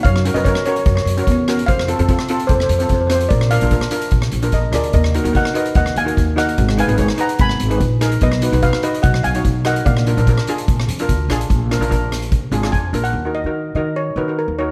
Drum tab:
HH |x-xxx-xxx-xxx-xx|x-xxx-xxx-xxx-xx|x-xxx-xxx-xxx-xx|x-xxx-xxx-xxx-xx|
SD |-r---r---r----r-|-r---r---r----r-|-r---r---r----r-|-r---r---r----r-|
BD |o---o---o---o---|o---o---o---o---|o---o---o---o---|o---o---o---o---|

HH |x-xxx-xxx-xxx-xx|x-xxx-xxx-xxx-xx|x-xxx-xxx-xxx-xx|x-xxx-xxx-xxx-xx|
SD |-r---r---r----r-|-r---r---r----r-|-r---r---r----r-|--r---r----r----|
BD |o---o---o---o---|o---o---o---o---|o---o---o---o---|o---o---o---o---|

HH |----------------|
SD |----------------|
BD |----------------|